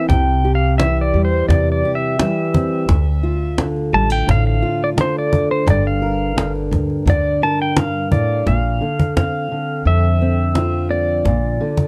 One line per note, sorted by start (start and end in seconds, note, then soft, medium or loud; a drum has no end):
0.00 0.44 E4 medium
0.08 1.10 C2 medium
0.08 0.80 C3 medium
0.08 0.55 G5 medium
0.08 cajon bass medium
0.08 cajon slap soft
0.45 1.84 G4 medium
0.55 0.78 F5 medium
0.78 2.18 E3 medium
0.78 1.03 E5 medium
0.78 cajon slap medium
0.97 cajon slap soft
1.01 1.24 D5 medium
1.14 1.47 E2 medium
1.14 2.18 G3 medium
1.25 1.48 C5 medium
1.32 cajon slap soft
1.49 1.82 E2 medium
1.49 2.19 C3 medium
1.49 1.71 D5 medium
1.49 cajon bass medium
1.49 cajon slap soft
1.72 1.96 D5 medium
1.85 2.85 G4 medium
1.85 cajon slap soft
1.95 3.66 E5 medium
2.19 2.85 E3 medium
2.19 2.89 G3 medium
2.19 cajon slap medium
2.54 2.85 C4 medium
2.54 cajon bass medium
2.88 5.67 D2 medium
2.88 3.89 D2 medium
2.88 cajon bass medium
2.88 cajon slap soft
3.23 4.62 F4 medium
3.58 4.96 D3 medium
3.58 cajon slap medium
3.76 cajon slap soft
3.93 4.26 A1 medium
3.93 4.10 G3 medium
3.93 4.12 A5 medium
4.10 4.96 A3 soft
4.10 4.29 G5 medium
4.10 cajon slap soft
4.27 4.61 A1 medium
4.27 4.97 A2 medium
4.27 cajon bass medium
4.27 cajon slap soft
4.31 4.46 F5 medium
4.47 4.82 F5 medium
4.62 5.70 F4 medium
4.62 cajon slap soft
4.84 4.89 D5 medium
4.97 6.35 D3 medium
4.97 5.63 A3 soft
4.97 5.16 C5 medium
4.97 cajon slap medium
5.19 5.51 D5 medium
5.33 8.83 D4 medium
5.33 cajon bass medium
5.51 5.69 C5 medium
5.67 6.68 G1 medium
5.67 7.75 G2 medium
5.67 5.87 D5 medium
5.67 cajon bass medium
5.67 cajon slap soft
5.86 6.52 F5 medium
5.86 cajon slap soft
6.02 7.42 A#4 medium
6.02 cajon slap soft
6.36 7.06 D3 medium
6.36 cajon slap medium
6.55 cajon slap soft
6.71 7.05 D2 medium
6.71 cajon bass medium
6.90 cajon slap soft
7.06 7.40 D2 medium
7.06 8.11 D3 medium
7.06 cajon bass medium
7.06 cajon slap soft
7.10 7.41 D5 medium
7.42 8.43 A#4 medium
7.42 7.61 A5 medium
7.42 cajon slap soft
7.62 7.79 G5 medium
7.76 8.12 G2 medium
7.76 8.46 F5 medium
7.76 cajon slap loud
8.11 8.46 A2 medium
8.11 8.48 D5 medium
8.11 cajon bass medium
8.46 8.80 A#1 medium
8.46 8.81 A#2 medium
8.46 9.16 F5 medium
8.46 cajon bass medium
8.46 cajon slap soft
8.81 9.50 D3 medium
8.81 cajon slap soft
9.00 cajon bass medium
9.17 10.20 C4 medium
9.17 9.87 F5 medium
9.17 cajon bass medium
9.17 cajon slap medium
9.51 11.59 D3 medium
9.85 11.21 F2 medium
9.85 11.22 F2 medium
9.85 10.87 E5 medium
9.85 cajon slap soft
10.21 10.90 C4 medium
10.21 cajon slap soft
10.55 11.88 F4 medium
10.55 cajon slap medium
10.91 11.22 C4 medium
10.91 11.88 D5 medium
11.25 11.58 A#1 medium
11.25 11.61 A#2 medium
11.25 cajon bass medium
11.25 cajon slap soft
11.61 11.88 D3 medium
11.61 cajon slap soft
11.77 cajon bass medium